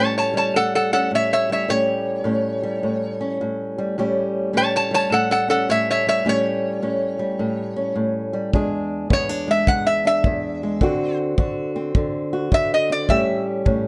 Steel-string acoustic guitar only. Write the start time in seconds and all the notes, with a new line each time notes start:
Already playing: A2 G3 C#4 G4
0.34 G3
0.54 A2
0.93 C#4
1.11 A2
1.49 G3
1.68 A2 G3 C#4 G4
2.24 A2 C#4
2.63 G3
2.83 A2
3.21 C#4
3.41 A2
3.78 G3
3.98 A2 G3 C#4 G4
4.53 A2 C#4
4.91 G3
5.10 A2
5.48 C#4
5.69 A2
6.07 G3
6.25 A2 G3 C#4 G4
6.82 A2 C#4
7.19 G3
7.39 A2
7.76 C#4
7.95 A2
8.33 G3
8.53 E2 G#3 D4 G#4
9.10 E2 B3
9.29 D4
9.48 G#3
9.68 E2
10.05 D4
10.26 E2
10.63 G#3
10.81 D3 C4 F#4
11.38 D3 F#4
11.76 C4
11.96 D3
12.33 F#4
12.52 D3
12.90 C4
13.09 A2 G3 C#4 G4
13.65 A2 C#4